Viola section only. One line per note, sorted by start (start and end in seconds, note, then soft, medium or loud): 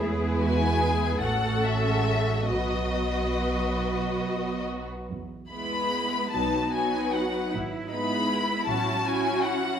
0.00 1.18 G#3 soft
0.00 1.18 B3 soft
1.22 1.85 A3 soft
1.22 2.50 C#4 soft
1.85 2.49 G#3 soft
2.50 4.90 F#3 soft
2.50 4.87 B3 soft
5.52 6.32 G#3 soft
5.52 6.32 B3 soft
6.33 6.72 F#3 soft
6.33 6.72 B3 soft
6.74 7.51 F#3 soft
6.74 7.51 B3 soft
7.91 8.67 G#3 soft
7.91 8.67 B3 soft
8.68 9.05 F#3 soft
8.68 9.05 C#4 soft
9.06 9.80 F#3 soft
9.06 9.80 C#4 soft